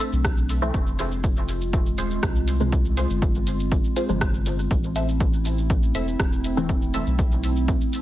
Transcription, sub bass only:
0.12 0.71 B1 loud
0.74 1.95 F1 loud
1.98 2.19 D#1 loud
2.23 3.06 C2 medium
3.10 3.81 G1 medium
4.09 4.67 G1 loud
4.71 5.91 A1 loud
5.95 6.15 E1 loud
6.20 7.03 E1 medium
7.07 7.78 B1 medium

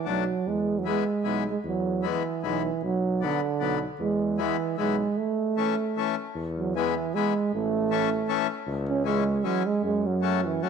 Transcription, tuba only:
0.07 0.32 B1 medium
0.46 0.97 E2 medium
1.24 1.51 B1 medium
1.64 2.16 E2 medium
2.43 2.69 B1 medium
2.82 3.33 B1 medium
3.61 3.86 B1 medium
3.99 4.50 E2 medium
4.79 5.03 B1 medium
6.35 7.12 E2 medium
7.53 8.28 A1 medium
8.67 9.42 C#2 loud
9.83 10.59 F#2 medium

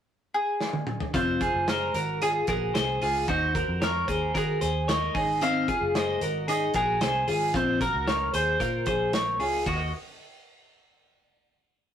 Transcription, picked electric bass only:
1.14 1.48 F1 medium
1.54 1.89 F#1 medium
1.94 2.40 G#1 medium
2.48 2.71 A#1 medium
2.75 2.98 C2 medium
3.02 3.24 C#2 medium
3.28 3.62 D#2 medium
3.68 4.02 F2 medium
4.08 4.31 D#2 medium
4.35 4.58 D#3 medium
4.61 5.07 D#2 medium
5.15 5.72 G#1 medium
5.81 6.15 F#1 medium
6.21 6.67 G#1 medium
6.75 6.97 A#1 medium
7.01 7.24 C2 medium
7.28 7.50 G#1 medium
7.54 7.88 A#1 medium
7.94 8.28 C#2 medium
8.34 8.56 D#2 medium
8.60 8.83 A#2 medium
8.86 9.40 A#1 medium
9.40 9.62 C#2 medium
9.67 9.91 D#2 medium

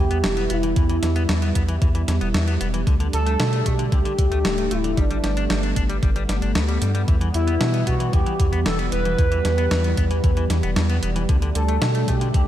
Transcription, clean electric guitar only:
0.11 0.17 B3 medium
0.24 0.34 E3 medium
0.37 0.43 B3 medium
0.50 0.57 B3 medium
0.63 0.70 E3 loud
0.76 0.83 E3 medium
0.90 0.96 E3 loud
1.03 1.09 E3 medium
1.16 1.22 B3 loud
1.29 1.39 E3 medium
1.42 1.49 B3 medium
1.55 1.62 B3 medium
1.69 1.75 E3 loud
1.82 1.88 E3 medium
1.95 2.01 E3 loud
2.08 2.15 E3 medium
2.21 2.28 B3 loud
2.34 2.44 E3 medium
2.47 2.54 B3 medium
2.61 2.67 B3 medium
2.74 2.80 E3 loud
2.87 2.94 D3 medium
3.00 3.07 D3 medium
3.13 3.20 D3 medium
3.26 3.33 A3 loud
3.40 3.49 D3 medium
3.53 3.59 A3 medium
3.66 3.72 A3 medium
3.79 3.86 D3 loud
3.92 3.99 D3 medium
4.05 4.12 D3 loud
4.19 4.25 D3 medium
4.32 4.38 A3 medium
4.45 4.55 D3 medium
4.58 4.65 A3 medium
4.71 4.78 A3 medium
4.84 4.91 D3 loud
4.97 5.04 G3 medium
5.11 5.17 G3 medium
5.24 5.30 G3 medium
5.37 5.44 D4 loud
5.50 5.60 G3 medium
5.63 5.70 D4 medium
5.76 5.83 D4 medium
5.89 5.96 G3 loud
6.03 6.09 G3 medium
6.16 6.22 G3 loud
6.29 6.36 G3 medium
6.42 6.52 D4 medium
6.55 6.62 B3 medium
6.68 6.78 G3 loud
6.81 6.91 G3 medium
6.95 7.01 G3 loud
7.08 7.14 E3 medium
7.21 7.28 E3 medium
7.34 7.41 E3 medium
7.47 7.54 B3 loud
7.60 7.70 E3 medium
7.74 7.80 B3 medium
7.87 7.93 B3 medium
8.00 8.07 E3 loud
8.13 8.20 E3 medium
8.26 8.33 E3 medium
8.39 8.46 E3 medium
8.52 8.59 B3 medium
8.66 8.76 E3 medium
8.79 8.85 B3 medium
8.92 8.99 B3 medium
9.05 9.12 E3 loud
9.18 9.25 E3 medium
9.32 9.38 E3 loud
9.45 9.51 E3 medium
9.58 9.65 B3 loud
9.71 9.81 E3 medium
9.84 9.91 B3 medium
9.98 10.04 B3 medium
10.11 10.17 E3 loud
10.24 10.30 E3 medium
10.37 10.44 E3 loud
10.50 10.57 E3 medium
10.63 10.70 B3 loud
10.76 10.86 E3 medium
10.90 10.96 B3 medium
11.03 11.09 B3 medium
11.16 11.22 E3 loud
11.29 11.36 D3 medium
11.42 11.49 D3 loud
11.55 11.62 D3 medium
11.68 11.75 A3 loud
11.82 11.92 D3 medium
11.95 12.01 A3 medium
12.08 12.15 A3 medium
12.21 12.28 D3 loud
12.34 12.41 D3 medium

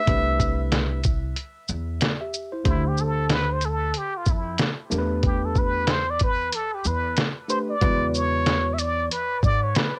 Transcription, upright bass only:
0.08 1.33 C2 loud
1.69 1.99 E2 medium
2.66 3.91 D2 loud
4.27 4.56 F2 medium
4.92 6.49 E2 medium
6.85 7.15 E2 medium
7.82 9.07 E2 loud
9.43 9.73 G#2 medium

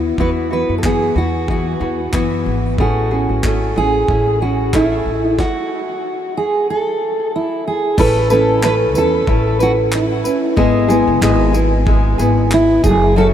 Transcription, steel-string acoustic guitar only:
0.21 0.29 B4 medium
0.53 0.76 B4 medium
0.78 0.84 A4 medium
0.85 1.17 G#4 medium
1.18 1.50 F#4 medium
1.51 2.43 F#4 medium
2.81 3.77 F#4 medium
3.78 4.38 G#4 medium
4.42 4.75 F#4 medium
4.75 5.21 E4 medium
5.40 6.37 F#4 medium
6.37 6.70 G#4 medium
6.70 7.30 A4 medium
7.36 7.65 E4 medium
7.68 7.97 G#4 medium
8.00 8.32 A4 loud
8.33 8.62 A4 loud
8.65 8.74 B4 loud
8.98 9.57 A4 loud
9.63 9.71 F#4 medium
9.95 10.41 E4 medium
12.54 12.85 E4 medium
12.85 13.18 G#4 loud
13.18 13.27 A4 loud

